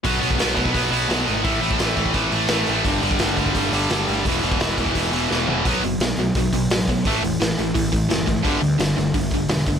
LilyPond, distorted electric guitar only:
\new Staff \with { instrumentName = "Distorted electric guitar" } { \clef bass \time 4/4 \key a \lydian \tempo 4 = 172 <b, fis b>8 <b, fis b>8 <b, fis b>8 <b, fis b>8 <b, fis b>8 <b, fis b>8 <b, fis b>8 <b, fis b>8 | <a, e a>8 <a, e a>8 <a, e a>8 <a, e a>8 <a, e a>8 <a, e a>8 <a, e a>8 <a, e a>8 | <g, d g>8 <g, d g>8 <g, d g>8 <g, d g>8 <g, d g>8 <g, d g>8 <g, d g>8 <g, d g>8 | <e, b, e>8 <e, b, e>8 <e, b, e>8 <e, b, e>8 <e, b, e>8 <e, b, e>8 <e, b, e>8 <e, b, e>8 |
<b, fis b>8 <b, fis>8 <b, fis>8 <b, fis>8 <b, fis>8 <b, fis>8 <b, fis>8 <b, fis>8 | <a, e a>8 <a, e>8 <a, e>8 <a, e>8 <a, e>8 <a, e>8 <a, e>8 <a, e>8 | <g, d g>8 <g, d>8 <g, d>8 <g, d>8 <g, d>8 <g, d>8 <g, d>8 <g, d>8 | }